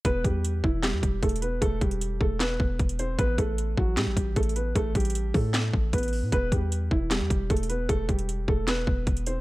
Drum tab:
HH |x-----------x-----------x-----------------------x-----------x-----------x---x---x---x-----------|x-----------x-----x-----x-----------------------x-----------------------x-----x-----x-----------|x-----------x-----------x-----------------------x-----------x-----------x---x---x---x-----------|x-----------x--x--x--x--x-----------o-----------x-----------------------x--x--x--x--o-----------|
CP |------------------------------------------------x-----------------------------------------------|------------------------------------------------x-----------------------------------------------|------------------------------------------------x-----------------------------------------------|------------------------------------------------x-----------------------------------------------|
SD |------------------------------------------------o-----------------------------------------------|------------------------------------------------o-----------------------------------------------|------------------------------------------------o-----------------------------------------------|------------------------------------------------o-----------------------------------------------|
BD |o-----------o-----------------------o-----------------------o-----------o-----------------------|o-----------o-----------------------o-----------------------o-----------o-----------------------|o-----------o-----------------------o-----------------------o-----------o-----------------------|o-----------o-----------------------o-----------------------o-----------o-----------------------|

HH |x-----------x-----------x-----------------------x-----------x-----------x---x---x---x-----------|x-----------x-----x-----x-----------------------x-----------------------x-----x-----x-----------|
CP |------------------------------------------------x-----------------------------------------------|------------------------------------------------x-----------------------------------------------|
SD |------------------------------------------------o-----------------------------------------------|------------------------------------------------o-----------------------------------------------|
BD |o-----------o-----------------------o-----------------------o-----------o-----------------------|o-----------o-----------------------o-----------------------o-----------o-----------------------|